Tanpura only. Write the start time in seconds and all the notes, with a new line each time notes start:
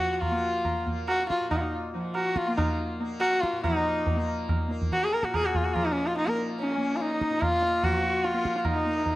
Already playing: A#2 F3 A#3
0.31 A#3
0.86 A#3
1.41 A#2
1.94 F3
2.48 A#3
3.00 A#3
3.53 A#2
3.63 F3
4.16 A#3
4.68 A#3
5.22 A#2
5.74 F3
6.27 A#3
6.77 A#3
7.30 A#2
7.83 F3
8.33 A#3
8.86 A#3